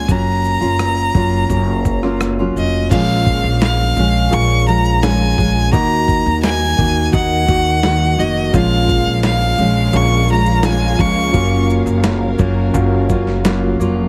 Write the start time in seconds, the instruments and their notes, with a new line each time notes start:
Already playing: violin G#5
0.08 upright bass F#1, steel-string acoustic guitar F#3 A#3 C#4 F4, violin A#5, kick, shaker
0.45 shaker
0.61 upright bass F#1, steel-string acoustic guitar A#3 C#4 F4, shaker
0.79 cross-stick, shaker
1.14 upright bass F#1, steel-string acoustic guitar F#3 A#3 C#4 F4, kick, shaker
1.49 upright bass F#1, steel-string acoustic guitar F#3 A#3 C#4 F4, kick, shaker
1.85 kick, shaker
2.03 steel-string acoustic guitar F#3 A#3 C#4 F4, cross-stick
2.21 cross-stick, shaker
2.39 steel-string acoustic guitar F#3 A#3 C#4 F4
2.56 upright bass F1, violin D#5, shaker
2.90 upright bass A#1, steel-string acoustic guitar A#2 F3 G#3 C#4 G#4, reed electric piano C#4 F4 G#4 A#4 F5, violin F5, kick, crash, shaker
3.26 kick, shaker
3.44 upright bass A#1
3.61 violin F5, snare, shaker
3.97 upright bass A#1, steel-string acoustic guitar F3 G#3 C#4 G#4, shaker
4.31 upright bass A#1, reed electric piano C#4 F4 G#4 A#4 F5, violin C#6, shaker
4.67 steel-string acoustic guitar F3 G#3 C#4 G#4, violin A#5, shaker
4.85 shaker
5.01 steel-string acoustic guitar F3 G#3 C#4 G#4, violin G#5, snare, shaker
5.36 upright bass A#1, steel-string acoustic guitar F3 G#3 C#4 G#4, kick, shaker
5.72 upright bass D#2, steel-string acoustic guitar D#3 A#3 D#4 F#4, reed electric piano F#4 A#4 D#5, violin A#5, kick, shaker
6.08 kick, shaker
6.26 upright bass D#2
6.43 violin G#5, snare, shaker
6.77 upright bass D#2, steel-string acoustic guitar D#3 A#3 D#4 F#4, kick, shaker
7.12 upright bass D#2, reed electric piano F#4 A#4 D#5, violin F#5, kick, shaker
7.46 steel-string acoustic guitar D#3 A#3 D#4 F#4, kick, shaker
7.65 shaker
7.82 steel-string acoustic guitar D#3 A#3 D#4 F#4, snare, shaker
8.17 upright bass F1, steel-string acoustic guitar D#3 A#3 D#4 F#4, violin D#5, shaker
8.52 upright bass A#1, steel-string acoustic guitar A#2 F3 G#3 C#4 F4, string section C#3 F3 G#3 A#3 F5, reed electric piano C#4 F4 G#4 A#4 F5, violin F5, kick, shaker
8.89 kick, shaker
9.07 upright bass A#1
9.23 violin F5, snare, shaker
9.58 upright bass A#1, steel-string acoustic guitar F3 G#3 C#4 F4, shaker
9.93 upright bass A#1, reed electric piano C#4 F4 G#4 A#4 F5, violin C#6, shaker
10.28 steel-string acoustic guitar F3 G#3 C#4 F4, shaker
10.32 violin A#5
10.46 shaker
10.63 steel-string acoustic guitar F3 G#3 C#4 F4, violin G#5, snare, shaker
10.98 upright bass C#2, steel-string acoustic guitar F3 G#3 C#4 F4, violin C#6, kick, shaker
11.33 upright bass F#1, steel-string acoustic guitar F#3 A#3 C#4 F4, string section F#3 A#4, reed electric piano C#4 F4 F#4 A#4 F5, kick, shaker
11.70 shaker
11.86 upright bass F#1, shaker
12.03 snare, shaker
12.38 upright bass F#1, steel-string acoustic guitar F#3 A#3 C#4 F4, kick, shaker
12.74 upright bass F#1, reed electric piano C#4 F4 F#4 A#4 F5, kick, shaker
13.09 steel-string acoustic guitar F#3 A#3 C#4 F4, kick, shaker
13.27 snare
13.44 steel-string acoustic guitar F#3 A#3 C#4 F4, snare, shaker
13.80 upright bass F1, steel-string acoustic guitar F#3 A#3 C#4 F4, shaker